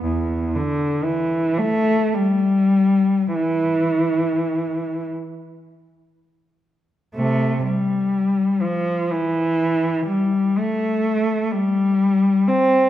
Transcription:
0.03 E2
0.55 D3
1.04 E3
1.58 A3
2.15 G3
3.35 E3
7.15 C3 A3
7.66 G3
8.62 F3
9.11 E3
10.06 G3
10.57 A3
11.52 G3
12.48 C4

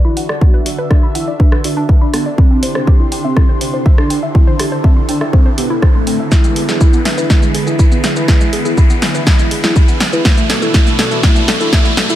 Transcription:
Already playing: D3 D4 F#4 F#5, riser
0.05 E4 B5
0.17 F#5, open hi-hat
0.29 D5, cross-stick
0.41 B3 F#4 E5, kick
0.54 B4
0.66 F#4, open hi-hat
0.78 B4
0.91 D4 D5, kick, cross-stick
1.03 B5
1.15 E4 F#5, open hi-hat
1.28 D5
1.40 D4 B4, kick
1.52 B4, cross-stick
1.64 D4 F#4, open hi-hat
1.77 D4
1.89 B4, kick
2.01 D4 B5
2.14 B3, cross-stick, open hi-hat
2.26 D5
2.38 C4 E4 G4 C6, kick
2.51 C4
2.63 C5, open hi-hat
2.75 C4 C5, cross-stick
2.87 G4, kick
3.00 E4
3.12 G5, open hi-hat
3.24 C4 E5
3.37 E4, kick, cross-stick
3.49 C5
3.61 C4 C5, open hi-hat
3.74 C5
3.86 E5, kick
3.98 D4 C6, cross-stick
4.10 G5, open hi-hat
4.23 E5
4.35 C4 E4 A4, kick
4.47 C5
4.59 G4, cross-stick, open hi-hat
4.72 C5
4.84 C4 E5, kick
4.97 C6
5.09 D4 G5, open hi-hat
5.21 E5, cross-stick
5.33 C4 C5, kick
5.46 C5
5.58 B3 G4, open hi-hat
5.70 E4
5.82 C5, kick, cross-stick
5.95 A3 C6
6.07 C4, open hi-hat
6.20 E5
6.31 G#3 B3 E4 G#4 B4, kick, snare, shaker
6.44 G#3, shaker
6.56 G#4, open hi-hat
6.69 E4 G#4, snare, shaker
6.81 E4, kick, shaker
6.93 B3, shaker
7.05 E5, snare, open hi-hat
7.18 E4 B4, shaker
7.30 G#3, kick, snare, shaker
7.42 G#3, shaker
7.55 G#4, open hi-hat
7.67 E4 G#4, shaker
7.79 E4, kick, shaker
7.92 B3, shaker
8.04 E5, snare, open hi-hat, shaker
8.16 E4 B4, shaker
8.28 G#3, kick, snare, shaker
8.41 G#3, shaker
8.53 G#4, open hi-hat
8.65 E4 G#4, shaker
8.77 E4, kick, shaker
8.90 B3, shaker
9.02 E5, snare, open hi-hat
9.15 E4 B4, shaker
9.27 G#3 E4, kick, snare, shaker
9.39 G#3, shaker
9.51 G#4, open hi-hat
9.64 E4 G#4, snare, shaker
9.76 E4, kick, shaker
9.88 B3, shaker
10.00 E5, snare, open hi-hat, shaker
10.13 E4 B4, shaker
10.25 B2 A3 D4 F#4 A4, kick, snare, shaker
10.38 A3, shaker
10.50 A4, snare, open hi-hat
10.62 E4 A4, shaker
10.74 A3 E4, kick, snare, shaker
10.87 A3, shaker
10.99 A4, snare, open hi-hat
11.11 E4 A4, shaker
11.23 A3 E4, kick, snare, shaker
11.36 A3, shaker
11.48 A4, snare, open hi-hat
11.60 E4 A4, shaker
11.73 A3 E4, kick, snare, shaker
11.85 A3, shaker
11.97 A4, snare, open hi-hat, shaker
12.10 E4 A4, shaker

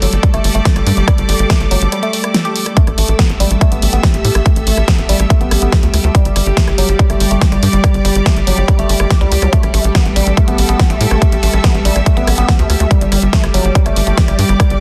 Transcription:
Already playing: G3 A3 G4 A4 D5 E5 D6 E6
0.02 G1 F#3, open hi-hat
0.13 G1, closed hi-hat
0.23 G3, kick, closed hi-hat
0.34 G1 A3, cross-stick, closed hi-hat
0.44 G1, open hi-hat
0.55 G1 A3, closed hi-hat
0.65 kick, snare, closed hi-hat
0.76 G1 G3, cross-stick, closed hi-hat
0.87 G2, open hi-hat
0.97 G1 G3, closed hi-hat
1.08 G3, kick, cross-stick, closed hi-hat
1.18 G1, closed hi-hat
1.29 G1 G3, open hi-hat
1.39 G1, closed hi-hat
1.50 A3, kick, cross-stick, snare, closed hi-hat
1.60 G1, closed hi-hat
1.71 G1 F#3, open hi-hat
1.82 G1, closed hi-hat
1.92 G3, cross-stick, closed hi-hat
2.03 A3, closed hi-hat
2.13 G3, open hi-hat
2.24 G3, cross-stick, closed hi-hat
2.34 snare, closed hi-hat
2.45 G4, closed hi-hat
2.56 open hi-hat
2.66 G3, cross-stick, closed hi-hat
2.77 G3 A3 G4, kick, closed hi-hat
2.87 A1 A4, cross-stick, closed hi-hat
2.98 A1 A3 E6, open hi-hat
3.08 A1 E5, closed hi-hat
3.19 B3, kick, cross-stick, snare, closed hi-hat
3.30 A1, closed hi-hat
3.40 A1 G3, open hi-hat
3.51 A1, closed hi-hat
3.61 A3, kick, cross-stick, closed hi-hat
3.72 A1 B3, closed hi-hat
3.82 A1, open hi-hat
3.93 A1 B3, closed hi-hat
4.03 kick, cross-stick, snare, closed hi-hat
4.14 A1 A3, closed hi-hat
4.25 A2, open hi-hat
4.35 A1 A3, cross-stick, closed hi-hat
4.46 A3, kick, closed hi-hat
4.56 A1, closed hi-hat
4.67 A1 A3, open hi-hat
4.77 A1, cross-stick, closed hi-hat
4.88 B3, kick, snare, closed hi-hat
4.99 A1, closed hi-hat
5.09 A1 G3, open hi-hat
5.20 A1, cross-stick, closed hi-hat
5.30 A3, kick, closed hi-hat
5.41 A1 B3, closed hi-hat
5.51 A1, cross-stick, open hi-hat
5.62 A1 B3, closed hi-hat
5.72 kick, snare, closed hi-hat
5.83 D2 A3, closed hi-hat
5.94 D2, cross-stick, open hi-hat
6.04 D2 A3, closed hi-hat
6.15 G3 G4, kick, closed hi-hat
6.25 G1, closed hi-hat
6.33 G1 G3 D5, cross-stick, open hi-hat
6.43 G1 D6, closed hi-hat
6.57 A3, kick, snare, closed hi-hat
6.68 G1, cross-stick, closed hi-hat
6.78 G1 F#3, open hi-hat
6.89 G1, closed hi-hat
6.99 G3, kick, closed hi-hat
7.10 G1 A3, cross-stick, closed hi-hat
7.20 G1, open hi-hat
7.31 G1 A3, closed hi-hat
7.41 kick, snare, closed hi-hat
7.52 G1 G3, cross-stick, closed hi-hat
7.63 G2, open hi-hat
7.73 G1 G3, closed hi-hat
7.84 G3, kick, cross-stick, closed hi-hat
7.94 G1, closed hi-hat
8.05 G1 G3, open hi-hat
8.15 G1, closed hi-hat
8.26 A3, kick, cross-stick, snare, closed hi-hat
8.37 G1, closed hi-hat
8.47 G1 F#3, open hi-hat
8.58 G1, closed hi-hat
8.68 G3, kick, cross-stick, closed hi-hat
8.79 G1 A3, closed hi-hat
8.89 G1, open hi-hat
9.00 G1 A3, cross-stick, closed hi-hat
9.10 G4, kick, snare, closed hi-hat
9.21 C#2 G3, closed hi-hat
9.32 C#2, open hi-hat
9.42 C#2 F#3, cross-stick, closed hi-hat
9.53 A3, kick, closed hi-hat
9.61 A1 A4, cross-stick, closed hi-hat
9.74 A1 A3 E5, open hi-hat
9.84 A1, closed hi-hat
9.95 B3, kick, cross-stick, snare, closed hi-hat
10.06 A1 E6, closed hi-hat
10.16 A1 G3, open hi-hat
10.27 A1, closed hi-hat
10.37 A3, kick, cross-stick, closed hi-hat
10.48 A1 B3, closed hi-hat
10.58 A1, open hi-hat
10.69 A1 B3, closed hi-hat
10.79 kick, cross-stick, snare, closed hi-hat
10.90 A1 A3, closed hi-hat
11.01 A2, open hi-hat
11.11 A1 A3, cross-stick, closed hi-hat
11.22 A3, kick, closed hi-hat
11.32 A1, closed hi-hat
11.43 A1 A3, open hi-hat
11.53 A1, cross-stick, closed hi-hat
11.64 B3, kick, snare, closed hi-hat
11.75 A1, closed hi-hat
11.85 A1 G3, open hi-hat
11.96 A1, cross-stick, closed hi-hat
12.06 A3, kick, closed hi-hat
12.17 A1 B3, closed hi-hat
12.27 A1, cross-stick, open hi-hat
12.38 A1 B3, closed hi-hat
12.49 kick, snare, closed hi-hat
12.59 D2 A3, closed hi-hat
12.70 D2, cross-stick, open hi-hat
12.80 D2 A3, closed hi-hat
12.91 G3, kick, closed hi-hat
13.01 G1, closed hi-hat
13.09 G1 G3 G4, cross-stick, open hi-hat
13.22 G1, closed hi-hat
13.33 A3 D5, kick, snare, closed hi-hat
13.44 G1, cross-stick, closed hi-hat
13.54 G1 F#3, open hi-hat
13.63 G1 D6, closed hi-hat
13.75 G3, kick, closed hi-hat
13.86 G1 A3, cross-stick, closed hi-hat
13.96 G1, open hi-hat
14.07 G1 A3, closed hi-hat
14.18 kick, snare, closed hi-hat
14.28 G1 G3, cross-stick, closed hi-hat
14.39 G2, open hi-hat
14.49 G1 G3, closed hi-hat
14.60 G3, kick, cross-stick, closed hi-hat
14.70 G1, closed hi-hat

